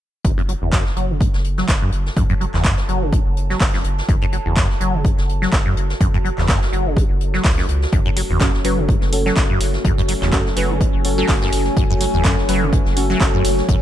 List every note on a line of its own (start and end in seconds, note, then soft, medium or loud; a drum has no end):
0.24 0.55 F#1 medium
0.24 0.32 F#2 medium
0.24 13.82 F#4 medium
0.24 kick loud
0.24 closed hi-hat medium
0.38 0.41 F#2 loud
0.38 closed hi-hat soft
0.49 0.53 F#3 medium
0.49 closed hi-hat medium
0.60 0.91 F#1 loud
0.60 0.71 E2 medium
0.60 13.82 A4 medium
0.73 0.84 F#2 medium
0.73 kick loud
0.73 snare loud
0.73 clap loud
0.73 closed hi-hat medium
0.86 snare soft
0.96 1.27 F#1 medium
0.96 1.11 F#3 medium
0.96 closed hi-hat medium
1.10 1.22 C#3 medium
1.21 1.28 F#2 medium
1.21 9.98 A5 medium
1.21 kick loud
1.21 closed hi-hat medium
1.34 1.63 F#1 medium
1.34 snare soft
1.44 closed hi-hat medium
1.52 13.82 C#5 medium
1.58 1.67 F#3 medium
1.58 snare soft
1.68 1.86 F#1 medium
1.68 kick loud
1.68 snare loud
1.68 clap loud
1.68 closed hi-hat medium
1.82 1.91 F#2 medium
1.92 2.10 F#1 medium
1.92 closed hi-hat medium
2.06 snare soft
2.16 2.47 F#1 medium
2.16 2.24 F#2 medium
2.16 kick loud
2.16 closed hi-hat medium
2.29 2.33 F#2 loud
2.29 closed hi-hat soft
2.40 2.45 F#3 medium
2.40 closed hi-hat medium
2.54 2.83 F#1 loud
2.54 2.63 E2 medium
2.54 snare soft
2.54 clap soft
2.64 2.76 F#2 medium
2.64 kick loud
2.64 snare loud
2.64 clap loud
2.64 closed hi-hat medium
2.78 snare medium
2.88 3.19 F#1 medium
2.88 3.03 F#3 medium
2.88 closed hi-hat medium
3.02 3.14 C#3 loud
3.13 3.20 F#2 medium
3.13 kick loud
3.13 closed hi-hat medium
3.26 3.55 F#1 medium
3.37 closed hi-hat medium
3.50 3.59 F#3 medium
3.50 snare soft
3.60 3.78 F#1 medium
3.60 kick loud
3.60 snare loud
3.60 clap loud
3.60 open hi-hat medium
3.74 3.83 F#2 medium
3.74 snare soft
3.84 4.02 F#1 loud
3.84 closed hi-hat medium
3.98 snare soft
4.09 4.39 F#1 medium
4.09 4.16 F#2 medium
4.09 kick loud
4.09 closed hi-hat medium
4.21 4.25 F#2 loud
4.21 closed hi-hat soft
4.32 4.37 F#3 medium
4.32 closed hi-hat medium
4.46 4.75 F#1 loud
4.46 4.55 E2 medium
4.56 4.68 F#2 medium
4.56 kick loud
4.56 snare loud
4.56 clap loud
4.56 closed hi-hat medium
4.70 snare soft
4.80 5.11 F#1 medium
4.80 4.95 F#3 medium
4.80 closed hi-hat medium
4.94 5.06 C#3 loud
5.04 5.12 F#2 medium
5.04 kick loud
5.04 closed hi-hat medium
5.18 5.47 F#1 medium
5.18 snare soft
5.29 closed hi-hat medium
5.42 5.51 F#3 medium
5.42 snare soft
5.52 5.70 F#1 medium
5.52 kick loud
5.52 snare loud
5.52 clap loud
5.52 closed hi-hat medium
5.66 5.75 F#2 medium
5.77 5.94 F#1 medium
5.77 closed hi-hat medium
5.90 snare soft
6.00 6.31 F#1 medium
6.00 6.08 F#2 medium
6.00 kick loud
6.00 closed hi-hat medium
6.14 6.17 F#2 loud
6.14 closed hi-hat soft
6.25 6.29 F#3 medium
6.25 closed hi-hat medium
6.38 6.67 F#1 loud
6.38 6.47 E2 medium
6.38 snare soft
6.38 clap soft
6.48 6.60 F#2 medium
6.48 kick loud
6.48 snare loud
6.48 clap loud
6.48 closed hi-hat medium
6.62 snare soft
6.73 7.03 F#1 medium
6.73 6.87 F#3 medium
6.73 closed hi-hat medium
6.86 6.98 C#3 loud
6.97 7.04 F#2 medium
6.97 kick loud
6.97 closed hi-hat medium
7.10 7.39 F#1 medium
7.21 closed hi-hat medium
7.34 7.43 F#3 medium
7.34 snare soft
7.44 7.62 C#2 loud
7.44 kick loud
7.44 snare loud
7.44 clap loud
7.44 open hi-hat medium
7.58 7.67 F#2 medium
7.58 snare medium
7.68 7.86 C#2 loud
7.68 closed hi-hat medium
7.82 snare soft
7.92 8.23 F#1 loud
7.92 8.00 F#2 medium
7.92 13.82 F#3 medium
7.92 13.82 A3 medium
7.92 13.82 C#4 medium
7.92 kick loud
7.92 closed hi-hat medium
8.05 8.09 F#2 medium
8.05 closed hi-hat soft
8.16 8.21 F#3 medium
8.16 closed hi-hat medium
8.16 open hi-hat medium
8.30 8.59 F#1 loud
8.30 8.39 E2 medium
8.40 8.51 F#2 medium
8.40 8.48 C#4 medium
8.40 8.48 F#4 medium
8.40 8.48 A4 medium
8.40 kick loud
8.40 snare loud
8.40 clap loud
8.40 closed hi-hat medium
8.54 snare soft
8.64 8.95 F#1 medium
8.64 8.79 F#3 medium
8.64 8.72 C#4 medium
8.64 8.72 F#4 medium
8.64 8.72 B4 medium
8.64 closed hi-hat medium
8.64 open hi-hat loud
8.78 8.90 C#3 loud
8.88 8.96 F#2 medium
8.88 kick loud
8.88 closed hi-hat medium
9.02 9.31 F#1 medium
9.02 snare soft
9.13 9.24 C#4 medium
9.13 9.24 F#4 medium
9.13 9.24 A4 medium
9.13 closed hi-hat medium
9.13 open hi-hat loud
9.26 9.35 F#3 medium
9.26 10.30 C#4 medium
9.26 10.30 F#4 medium
9.26 10.30 A4 loud
9.26 snare soft
9.37 9.54 F#1 medium
9.37 kick loud
9.37 snare loud
9.37 clap loud
9.37 closed hi-hat medium
9.50 9.59 F#2 medium
9.61 9.78 F#1 medium
9.61 closed hi-hat medium
9.61 open hi-hat loud
9.74 snare soft
9.83 10.15 F#1 loud
9.83 9.92 F#2 medium
9.83 13.82 G#5 medium
9.83 kick loud
9.83 closed hi-hat medium
9.98 10.01 F#2 medium
9.98 closed hi-hat soft
10.08 10.13 F#3 medium
10.08 closed hi-hat medium
10.08 open hi-hat medium
10.22 10.51 F#1 loud
10.22 10.31 E2 medium
10.22 snare soft
10.22 clap soft
10.33 10.44 F#2 medium
10.33 10.40 C#4 medium
10.33 10.40 F#4 medium
10.33 10.40 A4 medium
10.33 kick loud
10.33 snare loud
10.33 clap loud
10.33 closed hi-hat medium
10.46 snare soft
10.56 10.87 F#1 medium
10.56 10.71 F#3 medium
10.56 10.64 C#4 medium
10.56 10.64 F#4 medium
10.56 10.64 B4 medium
10.56 closed hi-hat medium
10.56 open hi-hat medium
10.70 10.82 C#3 medium
10.81 10.88 F#2 medium
10.81 kick loud
10.81 closed hi-hat medium
10.94 11.23 F#1 medium
11.04 11.16 C#4 medium
11.04 11.16 F#4 medium
11.04 11.16 A4 medium
11.04 closed hi-hat medium
11.04 open hi-hat loud
11.18 11.27 F#3 medium
11.18 12.22 C#4 medium
11.18 12.22 F#4 medium
11.18 12.22 A4 loud
11.18 snare soft
11.28 11.46 F#1 medium
11.28 kick loud
11.28 snare loud
11.28 clap loud
11.28 open hi-hat medium
11.42 11.51 F#2 medium
11.42 snare medium
11.52 11.70 F#1 loud
11.52 closed hi-hat medium
11.52 open hi-hat medium
11.65 snare soft
11.77 12.07 F#1 medium
11.77 11.84 F#2 medium
11.77 kick loud
11.77 closed hi-hat medium
11.90 11.94 F#2 loud
11.90 closed hi-hat soft
12.01 12.05 F#3 medium
12.01 closed hi-hat medium
12.01 open hi-hat medium
12.14 12.43 F#1 loud
12.14 12.23 E2 medium
12.24 12.36 F#2 medium
12.24 12.32 C#4 medium
12.24 12.32 F#4 medium
12.24 12.32 A4 loud
12.24 kick loud
12.24 snare loud
12.24 clap loud
12.24 closed hi-hat medium
12.38 snare soft
12.49 12.79 F#1 medium
12.49 12.63 F#3 medium
12.49 12.56 C#4 medium
12.49 12.56 F#4 medium
12.49 12.56 B4 medium
12.49 closed hi-hat medium
12.49 open hi-hat loud
12.62 12.74 C#3 loud
12.73 12.80 F#2 medium
12.73 kick loud
12.73 closed hi-hat medium
12.86 13.15 F#1 medium
12.86 snare soft
12.96 13.08 C#4 medium
12.96 13.08 F#4 medium
12.96 13.08 A4 medium
12.96 closed hi-hat medium
12.96 open hi-hat medium
13.10 13.19 F#3 medium
13.10 13.82 C#4 medium
13.10 13.82 F#4 medium
13.10 13.82 A4 loud
13.10 snare soft
13.21 13.38 F#1 medium
13.21 kick loud
13.21 snare loud
13.21 clap loud
13.21 closed hi-hat medium
13.34 13.43 F#2 medium
13.45 13.62 F#1 loud
13.45 closed hi-hat medium
13.45 open hi-hat loud
13.58 snare soft
13.68 13.82 F#1 loud
13.68 13.76 F#2 medium
13.68 kick loud
13.68 closed hi-hat medium